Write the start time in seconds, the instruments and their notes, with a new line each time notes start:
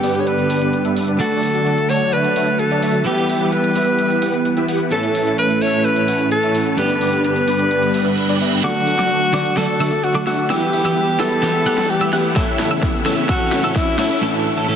Already playing: clean electric guitar G2 D3 G3 B3 G4, analog synth pad D3 G3 B3 G4, alto saxophone G4
0.03 supersaw synth B3 D4 G4 B4 D5, open hi-hat
0.15 closed hi-hat
0.20 alto saxophone C#5
0.27 alto saxophone B4, closed hi-hat
0.38 closed hi-hat
0.50 supersaw synth B3 D4 G4 B4 D5, open hi-hat
0.62 closed hi-hat
0.73 supersaw synth B3 D4 G4 B4 D5, closed hi-hat
0.85 supersaw synth B3 D4 G4 B4 E5, closed hi-hat
0.97 open hi-hat
1.08 supersaw synth B3 D4 G4 B4 D5, closed hi-hat
1.19 clean electric guitar D3 F#3 A3 F#4, analog synth pad F#3 A3 F#4, supersaw synth A3 D4 F#4 A4 D5, alto saxophone A4, closed hi-hat
1.31 closed hi-hat
1.43 open hi-hat
1.55 supersaw synth A3 D4 F#4 A4 D5, closed hi-hat
1.66 closed hi-hat
1.78 closed hi-hat
1.89 supersaw synth A3 D4 F#4 A4 D5, alto saxophone C#5, open hi-hat
2.01 closed hi-hat
2.13 alto saxophone B4, closed hi-hat
2.25 closed hi-hat
2.36 supersaw synth A3 D4 F#4 A4 E5, open hi-hat
2.48 closed hi-hat
2.59 alto saxophone A4, closed hi-hat
2.71 supersaw synth A3 D4 F#4 A4 D5, closed hi-hat
2.83 supersaw synth A3 D4 F#4 A4 E5, open hi-hat
2.94 closed hi-hat
3.05 clean electric guitar E3 G3 B3 G4, analog synth pad E3 G3 B3 G4, supersaw synth B3 E4 G4 B4 E5, alto saxophone G4, closed hi-hat
3.17 closed hi-hat
3.29 open hi-hat
3.41 supersaw synth B3 E4 G4 B4 E5, closed hi-hat
3.52 alto saxophone B4, closed hi-hat
3.64 closed hi-hat
3.76 supersaw synth B3 E4 G4 B4 E5, open hi-hat
3.87 closed hi-hat
3.99 closed hi-hat
4.10 closed hi-hat
4.22 supersaw synth B3 E4 G4 B4 F#5, open hi-hat
4.34 closed hi-hat
4.45 closed hi-hat
4.57 supersaw synth B3 E4 G4 B4 E5, closed hi-hat
4.69 supersaw synth B3 E4 G4 B4 F#5, open hi-hat
4.80 closed hi-hat
4.91 clean electric guitar A2 E3 A3 C#4 A4, analog synth pad A3 C#4 A4, supersaw synth C#4 E4 A4 C#5 E5, alto saxophone A4, closed hi-hat
5.03 closed hi-hat
5.15 open hi-hat
5.27 supersaw synth C#4 E4 A4 C#5 E5, closed hi-hat
5.38 alto saxophone B4, closed hi-hat
5.50 closed hi-hat
5.62 supersaw synth C#4 E4 A4 C#5 E5, alto saxophone C#5, open hi-hat
5.73 closed hi-hat
5.85 alto saxophone B4, closed hi-hat
5.96 closed hi-hat
6.08 supersaw synth C#4 E4 A4 C#5 F#5, open hi-hat
6.20 closed hi-hat
6.31 alto saxophone A4, closed hi-hat
6.43 supersaw synth C#4 E4 A4 C#5 E5, closed hi-hat
6.55 supersaw synth C#4 E4 A4 C#5 F#5, open hi-hat
6.66 closed hi-hat
6.77 clean electric guitar G2 D3 G3 B3 G4, analog synth pad G3 B3 D4 B4, supersaw synth B3 D4 G4 B4 D5, alto saxophone B4, closed hi-hat
6.90 closed hi-hat
7.01 open hi-hat
7.13 supersaw synth B3 D4 G4 B4 D5, closed hi-hat
7.24 alto saxophone B4, closed hi-hat
7.36 closed hi-hat
7.48 supersaw synth B3 D4 G4 B4 D5, open hi-hat
7.59 closed hi-hat
7.71 closed hi-hat, reverse cymbal
7.83 closed hi-hat
7.94 supersaw synth B3 D4 G4 B4 E5, open hi-hat
8.06 closed hi-hat
8.18 closed hi-hat
8.29 supersaw synth B3 D4 G4 B4 D5, closed hi-hat
8.41 supersaw synth B3 D4 G4 B4 E5, open hi-hat
8.52 closed hi-hat
8.63 analog synth bass D2, clean electric guitar D3 F#3 A3 F#4, analog synth pad D3 F#3 A3 F#4, supersaw synth A3 D4 F#4 A4 D5, alto saxophone F#4, synth pluck D6, snare, closed hi-hat, riser, cabasa
8.76 closed hi-hat, cabasa
8.87 analog synth bass D2, open hi-hat
8.98 clean electric guitar D3 F#3 A3 F#4, supersaw synth A3 D4 F#4 A4 D5, synth pluck D6, snare, closed hi-hat, cabasa
9.11 analog synth bass D2, closed hi-hat, cabasa
9.22 closed hi-hat, cabasa
9.33 analog synth bass D2, clean electric guitar D3 F#3 A3 F#4, supersaw synth A3 D4 F#4 A4 D5, synth pluck D6, snare, open hi-hat
9.45 closed hi-hat, cabasa
9.56 analog synth bass D1, clean electric guitar D3 F#3 A3 F#4, alto saxophone A4, snare, closed hi-hat, cabasa
9.69 analog synth bass D2, closed hi-hat, cabasa
9.80 analog synth bass D2, clean electric guitar D3 F#3 A3 F#4, supersaw synth A3 D4 F#4 A4 E5, synth pluck E6, open hi-hat
9.92 closed hi-hat, cabasa
10.03 analog synth bass D2, alto saxophone F#4, closed hi-hat, cabasa
10.15 clean electric guitar D3 F#3 A3 F#4, supersaw synth A3 D4 F#4 A4 D5, synth pluck D6, closed hi-hat, cabasa
10.27 analog synth bass D2, supersaw synth A3 D4 F#4 A4 E5, alto saxophone F#4, synth pluck E6, snare, open hi-hat
10.38 closed hi-hat, cabasa
10.49 analog synth bass E2, clean electric guitar E3 G3 B3 G4, analog synth pad E3 G3 B3 G4, supersaw synth B3 E4 G4 B4 E5, alto saxophone G4, synth pluck E6, snare, closed hi-hat, cabasa
10.62 closed hi-hat, cabasa
10.73 analog synth bass E2, open hi-hat
10.84 clean electric guitar E3 G3 B3 G4, supersaw synth B3 E4 G4 B4 E5, synth pluck E6, closed hi-hat, cabasa
10.96 analog synth bass E2, closed hi-hat, cabasa
11.08 closed hi-hat, cabasa
11.19 analog synth bass E2, clean electric guitar E3 G3 B3 G4, supersaw synth B3 E4 G4 B4 E5, alto saxophone A4, synth pluck E6, snare, open hi-hat
11.31 closed hi-hat, cabasa
11.42 analog synth bass E1, clean electric guitar E3 G3 B3 G4, snare, closed hi-hat, cabasa
11.55 analog synth bass E2, closed hi-hat, cabasa
11.66 analog synth bass E2, clean electric guitar E3 G3 B3 G4, supersaw synth B3 E4 G4 B4 F#5, synth pluck F#6, open hi-hat
11.78 analog synth bass E1, snare, closed hi-hat, cabasa
11.89 analog synth bass E2, alto saxophone G4, closed hi-hat, cabasa
12.00 clean electric guitar E3 G3 B3 G4, supersaw synth B3 E4 G4 B4 E5, synth pluck E6, closed hi-hat, cabasa
12.13 analog synth bass E2, supersaw synth B3 E4 G4 B4 F#5, alto saxophone G4, synth pluck F#6, snare, open hi-hat
12.24 closed hi-hat, cabasa
12.35 analog synth bass A1, clean electric guitar A2 E3 A3 C#4 A4, analog synth pad C#3 E3 A3 E4, supersaw synth C#4 E4 A4 C#5 E5, alto saxophone E4, synth pluck E6, kick, snare, closed hi-hat, cabasa
12.48 closed hi-hat, cabasa
12.59 analog synth bass A1, snare, open hi-hat
12.70 clean electric guitar A2 E3 A3 C#4 A4, supersaw synth C#4 E4 A4 C#5 E5, synth pluck E6, closed hi-hat, cabasa
12.83 analog synth bass A1, kick, snare, closed hi-hat, cabasa
12.94 closed hi-hat, cabasa
13.05 analog synth bass A1, clean electric guitar A2 E3 A3 C#4 A4, supersaw synth C#4 E4 A4 C#5 E5, synth pluck E6, snare, open hi-hat
13.18 closed hi-hat, cabasa
13.28 clean electric guitar A2 E3 A3 C#4 A4, analog synth bass A2, supersaw synth C#4 E4 A4 C#5 E5, alto saxophone F#4, synth pluck E6, kick, snare, closed hi-hat, cabasa
13.41 closed hi-hat, cabasa
13.52 analog synth bass A1, snare, open hi-hat
13.63 clean electric guitar A2 E3 A3 C#4 A4, analog synth bass A2, supersaw synth C#4 E4 A4 C#5 E5, synth pluck E6, closed hi-hat, cabasa
13.76 alto saxophone E4, kick, snare, closed hi-hat, cabasa
13.87 closed hi-hat, cabasa
13.98 analog synth bass A1, clean electric guitar A2 E3 A3 C#4 A4, supersaw synth C#4 E4 A4 C#5 E5, alto saxophone E4, synth pluck E6, snare, open hi-hat
14.11 closed hi-hat, cabasa
14.21 clean electric guitar A2 E3 A3 C#4 A4
14.56 clean electric guitar A2 E3 A3 C#4 A4
14.68 clean electric guitar A2 E3 A3 C#4 A4